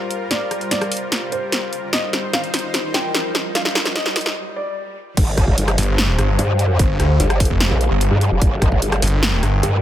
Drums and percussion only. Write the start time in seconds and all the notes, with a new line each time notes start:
0.11 closed hi-hat
0.31 snare, closed hi-hat
0.51 cross-stick, closed hi-hat
0.61 closed hi-hat
0.71 snare, closed hi-hat
0.81 cross-stick, closed hi-hat
0.92 open hi-hat
0.97 closed hi-hat
1.12 snare, closed hi-hat
1.32 closed hi-hat
1.52 snare, closed hi-hat
1.73 closed hi-hat
1.93 snare, closed hi-hat
2.13 snare, closed hi-hat
2.33 snare, closed hi-hat
2.44 closed hi-hat
2.54 snare, open hi-hat
2.59 closed hi-hat
2.74 snare, closed hi-hat
2.94 snare, closed hi-hat
3.15 snare, closed hi-hat
3.35 snare, closed hi-hat
3.55 snare, closed hi-hat
3.65 snare
3.75 snare, closed hi-hat
3.85 snare, closed hi-hat
3.96 snare, closed hi-hat
4.06 snare, closed hi-hat
4.16 snare, open hi-hat
4.21 closed hi-hat
4.26 snare
5.17 kick, closed hi-hat, crash
5.37 kick, cross-stick, closed hi-hat
5.48 kick
5.58 closed hi-hat
5.68 cross-stick, closed hi-hat
5.78 open hi-hat
5.83 closed hi-hat
5.98 snare, closed hi-hat
6.19 cross-stick, closed hi-hat
6.39 closed hi-hat
6.59 closed hi-hat
6.79 kick, closed hi-hat
7.00 cross-stick, closed hi-hat
7.20 closed hi-hat
7.30 cross-stick, closed hi-hat
7.40 kick, open hi-hat
7.60 snare, closed hi-hat
7.81 closed hi-hat
8.01 closed hi-hat
8.21 closed hi-hat
8.42 kick, closed hi-hat
8.62 kick, cross-stick, closed hi-hat
8.72 kick
8.82 closed hi-hat
8.92 cross-stick, closed hi-hat
9.02 open hi-hat
9.07 closed hi-hat
9.23 snare, closed hi-hat
9.43 cross-stick, closed hi-hat
9.63 closed hi-hat